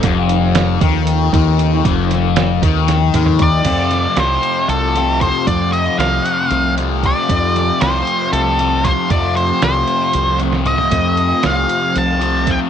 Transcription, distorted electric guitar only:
X:1
M:7/8
L:1/8
Q:1/4=116
K:Fmix
V:1 name="Distorted electric guitar" clef=bass
F,,3 E,2 E,2 | F,,3 E,2 E,2 | [F,,C,F,]2 [F,,C,F,]3 [C,F,] [F,,C,F,] | [F,,C,F,]2 [F,,C,F,]3 [C,F,] [F,,C,F,] |
[F,,C,F,]2 [F,,C,F,]3 [C,F,] [F,,C,F,] | [F,,C,F,]2 [F,,C,F,]3 [C,F,] [F,,C,F,] | [F,,C,F,]2 [F,,C,F,]3 [C,F,] [F,,C,F,] |]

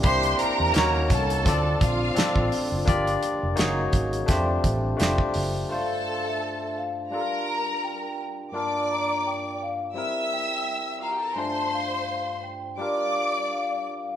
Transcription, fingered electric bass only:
X:1
M:4/4
L:1/16
Q:"Swing 16ths" 1/4=85
K:Gdor
V:1 name="Fingered electric bass" clef=bass
C,,2 z E,, _E,,2 C,,2 D,,2 B,,,2 z A,,, z ^F,,, | G,,,2 z F,,, ^F,,,2 ^G,,,2 =F,,2 A,,,2 =F,,, z ^F,,,2 | z16 | z16 |
z16 |]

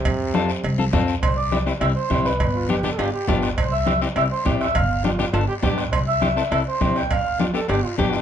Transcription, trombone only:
X:1
M:4/4
L:1/16
Q:1/4=204
K:C
V:1 name="Trombone"
C,12 z4 | z16 | z2 F2 G3 A G2 G2 F3 z | z16 |
z4 F4 F2 G2 G3 z | z16 | z4 F2 A2 G2 F2 G3 z |]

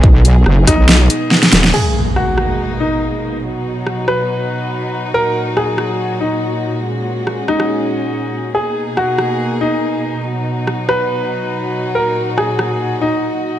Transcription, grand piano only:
X:1
M:4/4
L:1/8
Q:"Swing 16ths" 1/4=141
K:G#m
V:1 name="Grand piano"
z3 D4- D | G z F3 D3 | z3 B4- B | A z G3 D3 |
z3 D4- D | G z F3 D3 | z3 B4- B | A z G3 D3 |]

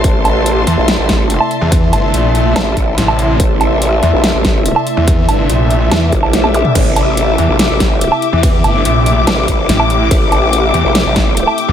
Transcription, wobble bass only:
X:1
M:4/4
L:1/16
Q:1/4=143
K:Aphr
V:1 name="Wobble bass" clef=bass
A,,,6 z B,,,2 A,,,4 z3 | z8 A,,,2 A,,,2 z4 | A,,,6 z B,,,2 A,,,4 z3 | z8 z2 G,,, B,,,4 z |
A,,,6 z B,,,2 A,,,4 z3 | z8 A,,,2 A,,,2 z4 | A,,,6 z B,,,2 A,,,4 z3 |]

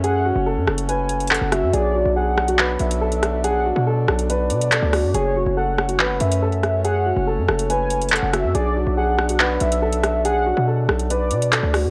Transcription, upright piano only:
X:1
M:4/4
L:1/16
Q:1/4=141
K:Bdor
V:1 name="Upright piano"
G2 F2 A2 A2 B4 A2 F2 | G2 F2 G3 F B4 A4 | G2 F2 A2 A2 B4 A2 F2 | G2 F2 A3 F B4 A4 |
G2 F2 A2 A2 B4 A2 F2 | G2 F2 G3 F B4 A4 | G2 F2 A2 A2 B4 A2 F2 |]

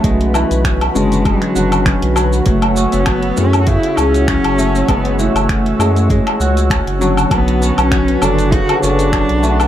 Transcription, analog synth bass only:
X:1
M:4/4
L:1/16
Q:"Swing 16ths" 1/4=99
K:F#m
V:1 name="Analog synth bass" clef=bass
B,,,3 B,,,3 F,,,3 z F,,,3 B,,,3 | F,,,3 F,,,3 F,,3 z C,,3 F,,,3 | F,,,3 F,,,3 F,,3 z C,,3 F,,,3 | B,,,3 B,,,3 F,,,3 z F,,,3 B,,,3 |]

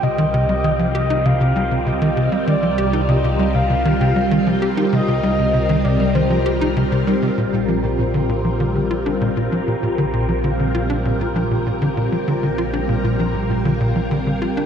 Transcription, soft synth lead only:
X:1
M:4/4
L:1/16
Q:1/4=98
K:Bbmix
V:1 name="Soft synth lead"
e6 e2 f4 e3 z | d4 e3 f f6 z2 | e6 d2 c4 z4 | z16 |
z16 | z16 |]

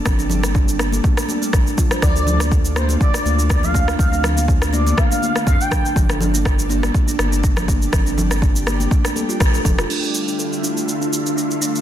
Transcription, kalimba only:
X:1
M:4/4
L:1/16
Q:"Swing 16ths" 1/4=122
K:Dm
V:1 name="Kalimba"
z D z D D z D z A, D z A, D z F c | D A z D A z D z A, D z D D z D z | C D z D D z D z A, D z A, D z D z | D A z D A z D z A, D z D D z D z |
z D z D D z D z A, D A F A, A A F | D A z D A z D z A, D z D D z D z |]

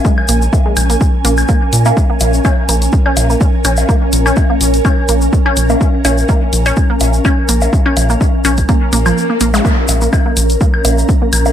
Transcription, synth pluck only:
X:1
M:4/4
L:1/16
Q:"Swing 16ths" 1/4=125
K:Bbm
V:1 name="Synth pluck"
A, z B, z2 A, z B, z2 B, z B, z2 B, | z B, z2 D z B, z2 D z B, z2 D z | B, z2 D z B, z2 D z B, z2 D z B, | z2 D z B, z2 D z B, z2 D z B, z |
z D z B, z2 D z B, z B, F, z B, B, A, | B, z2 B, z B, z2 B, z B, z2 B, z B, |]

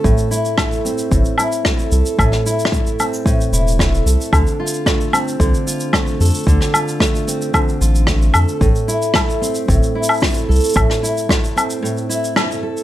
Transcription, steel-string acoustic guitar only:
X:1
M:4/4
L:1/8
Q:1/4=112
K:Aphr
V:1 name="Steel-string acoustic guitar"
A,, E A, C A,, E A, A | A,, E A, C A,, E A, A | D, F A, C D, F A, A | D, F A, C D, F A, A |
A,, E A, C A,, E A, A | A,, E A, C A,, E A, A |]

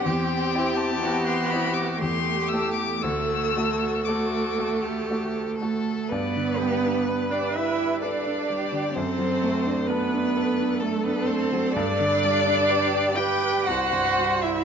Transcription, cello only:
X:1
M:3/4
L:1/16
Q:1/4=62
K:G
V:1 name="Cello"
G4 F4 G4 | A8- A2 A,2 | B,4- B, D E2 D4 | C4 B,4 A, B, C2 |
D6 G2 F3 E |]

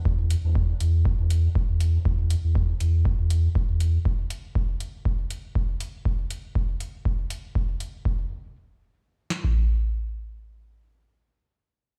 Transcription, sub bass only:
X:1
M:4/4
L:1/16
Q:"Swing 16ths" 1/4=120
K:Clyd
V:1 name="Sub bass" clef=bass
E,,2 z E,,2 z E,,2 z E,,2 z2 E,,2 z | E,,2 z E,,2 z E,,2 z E,,2 z2 E,,2 z | z16 | z16 |
z16 | z16 |]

